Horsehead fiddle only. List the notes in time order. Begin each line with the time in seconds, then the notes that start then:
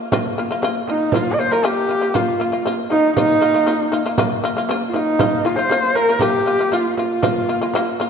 0.90 D#4
1.15 F4
1.34 D#5
1.40 C5
1.52 A#4
1.66 G4
2.16 F4
2.91 D#4
3.18 D#4
4.89 F4
4.94 D#4
5.45 F4
5.56 C5
5.95 A#4
6.22 G4
6.74 F4
6.98 F4